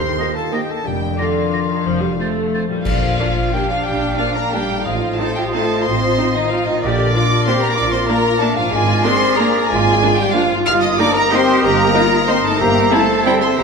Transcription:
Already playing: D#2 D#3 A#3 G4 A#4 C5 C6
0.05 D#4
0.18 D#3 A#3 C4 F4 G4 A#4 D#5 A#6
0.36 A4 D#5 A5
0.52 D#3 A#3 C4 D#4 G4 A#4 D#5 G5 A#6
0.69 G4 A4 A5
0.84 F1 F2 F3 D4 G4 G5
1.01 D4
1.17 D3 D4 F4 A#4 D5 F5 A#6
1.53 D4 F4 A#4 D5 A#6
1.70 D#3 F4
1.85 F1 F2 F3
2.02 G3 C4
2.19 A3 C4 F4 A4 C5 A6
2.36 C5
2.54 C4 F4 A4 C5 A6
2.68 A#2 G3 F4
2.73 A#3
2.78 D4 F4
2.85 A#1 F3 F4 D5 F5, concert bass drum, crash
3.19 A#3 D4 F4
3.52 G3 A#3 D4 G4 G5
3.69 F3 F4 F5
3.84 A#1 G3 G4 G5
4.17 F3 A#3 D4 F4 F5
4.34 A#3 A#4 A#5
4.53 G3 A#3 D4 G4 G5
4.68 A2
4.72 C4
4.77 D#4
4.82 F4 D#5 F5
4.86 A1 F3 F4 C5 F5
5.17 A3 C4 D#4 A4 A5
5.35 G3 G4 G5
5.52 A3 C4 D#4 A4 A5
5.84 A1 C4 C5 C6
6.18 C4 D#4
6.34 D#3 D#4 D#5
6.49 F3 C4 D#4 F4 F5
6.65 A#2 D#3 D#4 D#5
6.69 A#3
6.74 D4
6.79 D4 F4 G4 D5
6.83 A#1 D3 A#4 D5
7.12 A#3 D4 F4 D5 D6
7.16 D4
7.46 A#3 C4 D4 G4 C5 C6
7.61 A#3 A#4 A#5
7.75 A#1 D4 F4 D5 D6
7.91 C4 C5 C6
8.07 A#3 D4 A#4 A#5
8.39 A3 A#3 D4 A4 A5
8.54 G#2 F4 F5
8.58 F3 A#3
8.63 D4
8.68 G#3 F4 G#5
8.72 G#1 F4 G#4 A#4 D5 G#5
9.04 A#3 C4 D4 G#4 C5 C6
9.37 A#3 D4 A#4 A#5
9.67 G#1 G#3 F4 G#4 G#5
10.02 A#3 D4 F4
10.17 G3 G4 G5
10.33 F3 A#3 D4 F4 F5
10.47 G2
10.52 A#3
10.56 D#4
10.61 G4
10.65 G1 F4 A#4 D#5 F5 F6
10.80 D#4 D#5 D#6
10.97 A#3 D4 D#4 A#4 D5 D6
11.13 A#3 A#4 A#5
11.31 A#3 C4 D#4 G4 C5 C6
11.62 G1 A#3 A#4 A#5
11.94 A#3 D#4 F4
12.27 A#3 C4 D#4 C5 C6
12.42 G2 A3 A4 A5
12.47 C4
12.51 E4
12.56 G4 E5 A#5
12.60 G1 A#3 G4 A#4 C5 A#5
12.91 A3 C4 E4 A4 A5
13.25 G3 C4 E4 G4 G5
13.40 C4 C5 C6
13.57 G1 A#3 G4 A#4 A#5

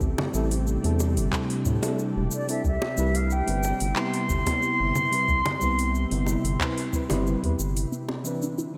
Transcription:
Already playing: C3 A3 G4
0.01 A1 D4, kick, shaker
0.18 high bongo, low conga
0.32 A1 G3 C4 E4 A4, shaker
0.51 open hi-hat, shaker
0.67 shaker
0.82 E2 G3 C4 E4 A4, open hi-hat
1.00 high bongo, shaker
1.17 G1, open hi-hat, shaker
1.31 G3 C4 E4 A4, kick, clap, shaker
1.50 open hi-hat
1.66 A2, kick, shaker
1.81 G3 C4 E4 A4, open hi-hat, high bongo, shaker
1.99 shaker
2.17 E1
2.31 D5, shaker
2.47 G3 C4 E4 A4 E5, open hi-hat, shaker
2.64 C2 C3 E4 E5, kick, shaker
2.82 high bongo
2.96 C2 G3 C4 E4 B4, shaker
3.15 F5, open hi-hat, shaker
3.30 G5, shaker
3.47 G1 G3 C4 E4 B4, open hi-hat
3.63 high bongo, shaker
3.80 G1, open hi-hat, shaker
3.95 G3 B3 C4 E4 C6, clap, shaker
4.14 open hi-hat
4.29 G1, kick, shaker
4.45 G3 B3 C4 E4, kick, open hi-hat, high bongo, shaker
4.63 shaker
4.80 G1
4.95 low conga, shaker
5.11 G3 C4 E4 B4, open hi-hat, shaker
5.28 C2, kick, shaker
5.46 open hi-hat, high bongo, low conga
5.60 C2 G3 B3 C4 E4, kick, shaker
5.79 open hi-hat, shaker
5.95 shaker
6.10 G1 G3 B3 C4 E4, open hi-hat
6.26 high bongo, shaker
6.44 G1, open hi-hat, shaker
6.59 G3 C4 E4 B4, kick, clap, shaker
6.78 open hi-hat
6.92 G3 C4 E4 B4, kick, shaker
7.09 G1 G3 C4 E4 B4, open hi-hat, high bongo, low conga, shaker
7.27 shaker
7.43 E2 G3 C4 E4 B4, kick, open hi-hat
7.59 G1, shaker
7.77 open hi-hat, shaker
7.91 D3 B3 C4 E4 B4, shaker
8.09 C4, high bongo
8.24 E3 C4 D4 B4, shaker
8.42 D4, shaker
8.58 E4, shaker
8.74 E3

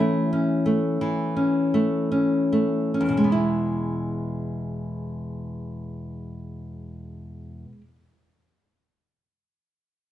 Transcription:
Already playing: E3 C#4
0.00 A3 E4
0.33 C#4
0.66 A3
1.01 E3
1.36 C#4
1.74 A3
2.12 C#4
2.52 A3
2.94 C#4
3.01 E2
3.09 B2
3.17 G#3
3.24 B3
3.32 E4

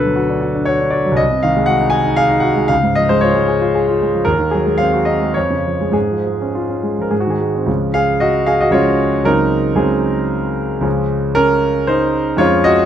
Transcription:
Already playing: D2 B2 D3 A4 B4
0.05 F#3
0.16 F#4
0.29 D4
0.41 F#4
0.55 D4
0.65 F#4 C#5
0.80 D4
0.90 F#4 D5
1.05 F#3
1.12 C2
1.17 D#5
1.31 C3
1.43 D#3 F5
1.56 G#3
1.66 F#4 F#5
1.81 D#4
1.90 G#4 G#5
2.05 D#4
2.16 G#4 F5
2.30 D#4
2.40 F#4 F#5
2.56 G#3
2.68 C#2 F5
2.83 G#2
2.95 F3 D#5
3.09 G#3 C5
3.21 F4 C#5
3.34 G#3
3.48 G#4
3.62 F4
3.75 G#4
3.88 F4
4.02 G#3
4.15 F3
4.25 D#2 A#4
4.39 D#3
4.51 F#3 G#4
4.66 G#3
4.78 C4 F5
4.93 F#4
5.05 C4 D#5
5.22 G#3
5.34 F2 C#5
5.50 C#3
5.67 F3
5.81 G#3
5.92 G#2 G#4
6.11 F3
6.26 G#3
6.42 C#4
6.55 F4
6.69 C#4
6.83 G#3
6.98 F3 A#4
7.11 G#2 G#4
7.20 F#4
7.27 D#3 G#4
7.41 G#3
7.55 C4
7.66 C#2 F3 G#3 C#4
7.94 G#4 F5
8.20 F#4 D#5
8.46 G#4 F5
8.61 F#4 D#5
8.71 C#2 F3 G#3 C#4 F4 C#5
9.24 C#2 F#3 G#3 C4 D#4 A#4
9.75 C#2 F#3 G#3 C4 G#4
10.81 C#2 F3 G#3 C#4
11.35 C#4 A#4
11.87 D#4 C5
12.37 F2 F3 G#3 C#4 F4 C#5
12.64 F#4 D#5

